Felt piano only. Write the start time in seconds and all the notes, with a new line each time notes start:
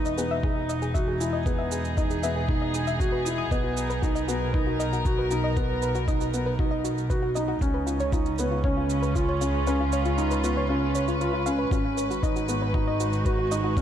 Already playing: D#4
0.18 B3
0.43 D#4
0.95 F#4
1.21 E4
1.46 B3
1.98 D#4
2.24 B3
2.49 D#4
3.00 F#4
3.26 E4
3.51 B3
4.04 D#4
4.29 B3
4.55 D#4
5.06 F#4
5.32 D#4
5.57 B3
6.08 D#4
6.34 B3
6.60 D#4
7.11 F#4
7.37 D#4
7.62 C#4
8.13 D#4
8.40 B3
8.65 C#4
9.15 F4
9.41 C#4
9.67 C#4
10.18 D#4
10.43 B3
10.69 C#4
11.21 F4
11.46 C#4
11.72 C#4
12.23 D#4
12.49 B3
12.74 D#4
13.26 F#4
13.52 D#4
13.77 C#4